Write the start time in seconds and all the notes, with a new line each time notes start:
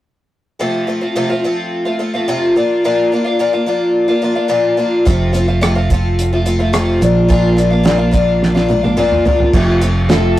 0.59 F2 C3 F3 A3 C4 F4
0.87 F3 A3 C4 F4
1.01 F3 A3 C4 F4
1.15 F2 C3 F3 A3 C4 F4
1.29 F3 A3 C4 F4
1.44 F3 A3 C4 F4
1.85 F3 A3 C4 F4
1.99 F3 A3 C4 F4
2.14 F3 A3 C4 F4
2.28 F2 C3 F3 A3 C4 F4
2.56 F3 A#3 D4 F4
2.84 A#2 F3 A#3 D4 F4
3.12 F3 A#3 D4 F4
3.24 A#3 D4 F4
3.39 A#2 F3 A#3 D4 F4
3.53 A#3 D4 F4
3.66 F3 A#3 D4 F4
4.08 A#3 D4 F4
4.22 F3 A#3 D4 F4
4.35 A#3 D4 F4
4.48 A#2 F3 A#3 D4 F4
4.77 F3 A#3 D4 F4
5.05 F1 F2 C3 F3 A3 C4 F4, kick, closed hi-hat
5.33 F3 A3 C4 F4, closed hi-hat
5.48 F3 A3 C4 F4
5.61 F2 C3 F3 A3 C4 F4, cross-stick, closed hi-hat
5.75 F3 A3 C4 F4
5.90 F3 A3 C4 F4, kick, closed hi-hat
6.19 closed hi-hat
6.33 F3 A3 C4 F4
6.45 F3 A3 C4 F4, closed hi-hat
6.59 F3 A3 C4 F4
6.73 F2 C3 F3 A3 C4 F4, cross-stick, closed hi-hat
7.01 A#1 F3 A#3 D4 F4, closed hi-hat
7.28 A#2 F3 A#3 D4 F4, kick, closed hi-hat
7.57 F3 A#3 D4 F4, closed hi-hat
7.70 A#3 D4 F4
7.83 A#2 F3 A#3 D4 F4, snare, closed hi-hat
7.98 A#3 D4 F4
8.11 F3 A#3 D4 F4, kick, closed hi-hat
8.43 snare
8.55 A#3 D4 F4, snare
8.68 F3 A#3 D4 F4, high tom
8.83 A#3 D4 F4, high tom
8.97 A#2 F3 A#3 D4 F4, mid tom
9.12 mid tom
9.25 F3 A#3 D4 F4, floor tom
9.40 floor tom
9.53 F1 F2 C3 F3 A3 C4 F4, kick, crash
9.81 F3 A3 C4 F4, closed hi-hat
10.09 F2 C3 F3 A3 C4 F4 A4, snare, closed hi-hat